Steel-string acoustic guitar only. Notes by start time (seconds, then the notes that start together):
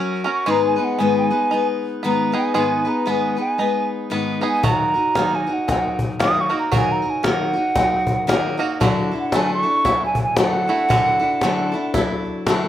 Already playing: F#3 C#4 F#4 A#4
0.24 C#4 F#4 A#4
0.46 G#2 D#3 G#3 B3 D#4 B4
0.76 G#3 B3 D#4 B4
0.99 G#2 D#3 G#3 B3 D#4 B4
1.30 G#3 B3 D#4 B4
1.51 G#3 B3 D#4 B4
2.04 G#2 D#3 G#3 B3 D#4 B4
2.32 G#3 B3 D#4 B4
2.54 G#2 D#3 G#3 B3 D#4 B4
2.85 G#3 B3 D#4 B4
3.06 G#2 D#3 G#3 B3 D#4 B4
3.36 G#3 B3 D#4 B4
3.58 G#3 B3 D#4 B4
4.10 G#2 D#3 G#3 B3 D#4 B4
4.41 G#3 B3 D#4 B4
4.63 D#3 F#3 D#4 F#4 A#4
4.94 D#4 F#4 A#4
5.17 D#3 F#3 D#4 F#4 A#4
5.47 D#4 F#4 A#4
5.68 F#3 D#4 F#4 A#4
6.20 D#3 F#3 D#4 F#4 A#4
6.50 D#4 F#4 A#4
6.72 D#3 F#3 D#4 F#4 A#4
7.02 D#4 F#4 A#4
7.23 D#3 F#3 D#4 F#4 A#4
7.53 D#4 F#4 A#4
7.76 F#3 D#4 F#4 A#4
8.27 D#3 F#3 D#4 F#4 A#4
8.57 D#4 F#4 A#4
8.80 D3 F#3 D4 E4 A4
9.11 D4 E4 A4
9.33 D3 F#3 D4 E4 A4
9.63 D4 E4 A4
9.85 F#3 D4 E4 A4
10.37 D3 F#3 D4 E4 A4
10.67 D4 E4 A4
10.89 D3 F#3 D4 E4 A4
11.20 D4 E4 A4
11.43 D3 F#3 D4 E4 A4
11.72 D4 E4 A4
11.95 F#3 D4 E4 A4
12.47 D3 F#3 D4 E4 A4